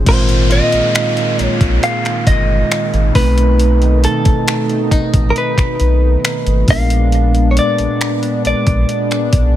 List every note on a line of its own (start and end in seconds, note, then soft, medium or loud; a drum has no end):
0.04 0.61 G#1 loud
0.04 3.10 A#2 medium
0.04 6.64 D#3 medium
0.04 3.11 G#3 medium
0.04 3.12 G#3 medium
0.04 3.12 A#3 medium
0.04 3.11 C4 medium
0.04 3.12 F4 medium
0.04 kick loud
0.04 closed hi-hat medium
0.04 crash medium
0.04 downlifter medium
0.09 3.13 A#4 medium
0.09 0.49 C5 loud
0.29 closed hi-hat soft
0.50 1.44 F4 medium
0.50 1.44 D#5 loud
0.50 closed hi-hat medium
0.72 0.82 A#1 soft
0.72 closed hi-hat medium
0.95 finger snap loud
0.95 closed hi-hat medium
1.17 closed hi-hat soft
1.39 1.48 A#1 soft
1.39 closed hi-hat medium
1.44 1.83 C#5 loud
1.61 1.79 A#1 medium
1.61 kick medium
1.61 closed hi-hat medium
1.83 2.27 F5 loud
1.83 closed hi-hat medium
2.05 finger snap medium
2.05 closed hi-hat soft
2.27 2.64 G1 medium
2.27 3.15 D#5 loud
2.27 kick medium
2.27 closed hi-hat medium
2.71 finger snap loud
2.71 closed hi-hat medium
2.94 3.12 G#1 medium
2.94 closed hi-hat soft
3.13 4.07 B1 loud
3.13 6.63 B2 medium
3.13 6.64 B2 medium
3.13 6.64 A3 medium
3.13 6.65 A3 medium
3.13 6.64 C4 medium
3.13 6.65 D#4 medium
3.13 4.04 B4 medium
3.13 kick loud
3.13 open hi-hat medium
3.18 6.66 B4 medium
3.38 closed hi-hat medium
3.60 closed hi-hat medium
3.82 closed hi-hat soft
4.04 4.88 A4 medium
4.04 closed hi-hat medium
4.25 4.35 A1 soft
4.25 kick loud
4.25 closed hi-hat medium
4.48 finger snap loud
4.48 closed hi-hat medium
4.69 closed hi-hat soft
4.91 5.00 A1 soft
4.91 5.85 D#4 medium
4.91 kick medium
4.91 closed hi-hat medium
5.14 5.32 A1 medium
5.14 kick medium
5.14 closed hi-hat medium
5.30 5.37 A#4 medium
5.36 6.70 B4 medium
5.36 closed hi-hat medium
5.58 finger snap medium
5.58 kick medium
5.58 closed hi-hat medium
5.80 6.17 B1 medium
5.80 closed hi-hat medium
6.25 finger snap loud
6.25 closed hi-hat medium
6.47 6.65 G#1 medium
6.47 closed hi-hat medium
6.66 7.60 A#1 loud
6.66 9.56 A#2 medium
6.66 9.56 G#3 medium
6.66 9.56 B3 medium
6.66 9.56 D4 medium
6.66 kick loud
6.66 open hi-hat medium
6.70 9.56 A#4 medium
6.70 7.51 F5 loud
6.90 closed hi-hat medium
7.12 closed hi-hat medium
7.35 closed hi-hat soft
7.51 7.57 C#5 medium
7.57 8.42 D5 loud
7.57 closed hi-hat medium
7.78 7.88 A#1 soft
7.78 closed hi-hat medium
8.01 finger snap loud
8.01 closed hi-hat medium
8.23 closed hi-hat soft
8.45 8.54 A#1 soft
8.45 9.56 D5 loud
8.45 closed hi-hat medium
8.67 8.85 A#1 loud
8.67 kick medium
8.67 closed hi-hat medium
8.89 closed hi-hat medium
9.11 finger snap medium
9.11 closed hi-hat medium
9.33 9.56 B1 medium
9.33 kick medium
9.33 closed hi-hat medium